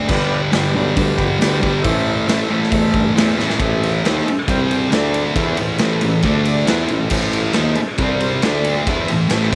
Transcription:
0.08 G1 G2 D3 G3 G4 B4 D5, kick, crash
0.50 G1 G2 D3 G3 G4 B4 D5, snare, open hi-hat
0.75 B1 G2 D3 G3
0.96 D2 G2 D3 G3 G4 B4 D5, kick, open hi-hat
1.19 F2, kick
1.39 D2 G2 D3 G3 G4 B4 D5, snare, open hi-hat
1.60 G2 D3 G3, kick
1.82 A1 A2 E3 A3 A4 C5 E5, kick, open hi-hat
2.27 A1 A2 E3 A3 A4 C5 E5, snare, open hi-hat
2.50 A2 E3 A3
2.63 snare
2.71 E2 A2 E3 A3 A4 C5 E5, kick, open hi-hat
2.94 G2, kick
3.15 E2 A2 E3 A3 A4 C5, snare, open hi-hat
3.20 E5
3.37 A2 E3 A3, snare
3.50 snare
3.59 A1 A2 E3 A3 A4 C5 E5, kick, ride
3.83 snare, ride
4.04 D#2 D#3 A#3 D#4 A4 C5 E5, snare, ride
4.18 snare
4.25 A1, muted distorted electric guitar stroke, ride
4.47 C2 C3 G3 C4 G4 C5 G5, kick, ride
4.71 ride
4.91 D2 D3 A3 D4 A4 D5, snare, ride
5.14 ride
5.34 E2 E3 B3 E4 A4 C5, kick, ride
5.57 A1 A2 E3, ride
5.78 A1 A2 E3 A3 E4 A4 C5, snare, ride
6.01 A1 A2 E3, ride
6.22 D2 D3 A3 D4 A4 D5, kick, ride
6.45 ride
6.67 E2 E3 B3 E4 A4 C5, snare, ride
6.88 A1 A2 E3, ride
7.10 A1 A2 E3 A3 E4 A4 C5, kick, crash
7.33 ride
7.53 D#3 A#3 D#4 E4 A4 C5, snare, ride
7.58 D#2
7.75 muted distorted electric guitar stroke, ride
7.80 A1
7.98 C2 C3 G3 C4, kick, ride
8.02 G4 C5
8.20 ride
8.42 D2 D3 A3 D4 A4 D5, snare, ride
8.64 ride
8.87 E2 E3 B3 E4 A4 C5, kick, ride
9.08 A2 E3, ride
9.29 A1 A2 E3 A3, snare, ride
9.35 E4 A4 C5
9.43 snare
9.51 C3

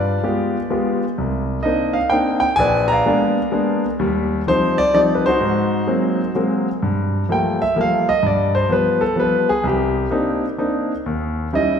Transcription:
Already playing: G2 F4 B4 D5
0.23 G#3 B3 F4 G4
0.70 G#3 B3 F4 G4
1.18 C2
1.63 A#3 C4 D4 D#4 D#5
1.93 F5
2.10 A#3 C4 D4 D#4 G5
2.40 G5
2.56 A#1 B4 D5 G#5
2.88 A#5
2.92 D5 F5
3.06 G#3 A#3 B3 D4
3.52 G#3 A#3 B3 D4
3.99 D#2 G3
4.47 F3 G3 C4 D#4 C5
4.78 D5
4.94 F3 G3 C4 D#4 D5
5.15 B4
5.26 D#4 F#4 C5
5.41 G#2
5.87 F#3 G#3 A#3 C4
6.35 F#3 G#3 A#3 C4
6.82 G2
7.29 F3 G3 A3 A#3 G5
7.62 E5
7.76 F3 G3 A3 A#3
7.81 F5
8.09 D#5
8.23 G2 D5
8.55 C5
8.69 F3 G3 B3 B4
9.01 A4
9.16 F3 G3 B3 B4
9.49 G#4
9.64 C2 G4
10.11 A#3 C4 D4 D#4
10.58 A#3 C4 D4 D#4
11.06 D#2
11.53 G3 C#4 D#4 E4 D#5

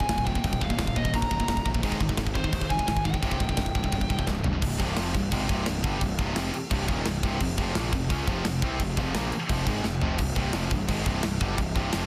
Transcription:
Already playing: G#5
0.00 D#2 A#2, kick
0.09 D#1 D#2 A#2, kick, snare, crash
0.18 kick
0.25 D#2 A#2 G5, kick
0.35 D#2 A#2, kick
0.44 D#1 D#2 A#2 G5, kick, crash
0.53 kick
0.61 D#1 D#2 A#2 F5, kick
0.69 D#2 A#2, kick
0.78 D#1 D#2 A#2, kick, snare, crash
0.87 kick
0.96 D#1 D#2 A#2 D#5, kick
1.04 D#2 A#2, kick
1.13 A#1 D#2 A#2 A#5, kick, crash
1.22 kick
1.31 D#1 D#2 A#2, kick
1.39 D#2 A#2, kick
1.48 D#1 D#2 A#2, kick, snare, crash
1.57 kick
1.65 A#1 D#2 A#2, kick
1.74 D#2 A#2, kick
1.83 G#1 G#2 D#3 G#3, kick, crash
1.92 kick
2.00 G#1 G#2 D#3, kick
2.09 G#2 D#3, kick
2.17 G#1 G#2 D#3, kick, snare, crash
2.27 kick
2.34 G#2 D#3 C5, kick
2.44 G#2 D#3, kick
2.52 D#2 G#2 D#3, kick, crash
2.61 kick
2.70 G#1 G#2 D#3 G#5, kick
2.78 G#2 D#3, kick
2.87 G#1 G#2 D#3 G#5, kick, snare, crash
2.97 kick
3.05 G#2 D#3 G5, kick
3.13 G#2 D#3, kick
3.22 C1 C2 G2 C3, kick, crash
3.31 kick
3.40 C1 C2 G2, kick
3.49 C2 G2, kick
3.57 C1 C2 G2, kick, snare, crash
3.66 kick
3.75 C1 C2 G2, kick
3.84 C2 G2, kick
3.92 G1 C2 G2, kick, crash
4.01 kick
4.10 C1 C2 G2, kick
4.19 C2 G2, kick
4.27 C1 C2 G2, kick, snare
4.44 G1 C2 G2, floor tom
4.54 C2 G2
4.62 C1 C2 G2, kick, crash
4.79 C1 C2 G2 C3, kick, crash
4.97 F1 F2 C3 F3, snare, crash
5.15 C1 C2 G2, kick, crash
5.32 G#1 G#2 D#3 G#3, kick, crash
5.49 C1 C2 G2 C3, kick, crash
5.66 C1 C2 G2, snare, crash
5.84 G1 G2 D3 G3, kick, crash
6.00 C1 C2 G2, kick, crash
6.18 C1 C2 G2 C3, kick, crash
6.35 F1 F2 C3 F3, snare, crash
6.53 muted picked electric bass stroke, muted distorted electric guitar stroke, crash
6.71 C1 C2 G2 C3, kick, crash
6.88 D#1 D#2 A#2 D#3, kick, crash
7.06 C1 C2 G2, snare, crash
7.23 C1 C2 G2 C3, kick, crash
7.40 F1 F2 C3, kick, crash
7.57 F1 F2 C3 F3, kick, crash
7.75 A#1 A#2 F3 A#3, snare, crash
7.93 F1 F2 C3, kick, crash
8.10 C#2 C#3 G#3 C#4, kick, crash
8.27 F1 F2 C3 F3, kick, crash
8.44 F1 F2 C3, snare, crash
8.62 C2 C3 G3 C4, kick, crash
8.79 F1 F2 C3, kick, crash
8.97 F1 F2 C3 F3, kick, crash
9.14 A#1 A#2 F3 A#3, snare, crash
9.31 muted picked electric bass stroke, muted distorted electric guitar stroke, crash
9.49 F1 F2 C3 F3, kick, crash
9.66 G#1 G#2 D#3 G#3, kick, crash
9.83 F1 F2 C3, snare
10.01 F1 F2 C3 F3, floor tom
10.18 C1 C2 G2, kick, crash
10.36 C1 C2 G2 C3, kick, crash
10.53 F1 F2 C3 F3, snare, crash
10.70 C1 C2 G2, kick, crash
10.88 G#1 G#2 D#3 G#3, kick, crash
11.06 C1 C2 G2 C3, kick, crash
11.23 C1 C2 G2, snare, crash
11.40 G1 G2 D3 G3, kick, crash
11.58 C1 C2 G2, kick, crash
11.75 C1 C2 G2 C3, kick, crash
11.93 F1 F2 C3 F3, snare, crash

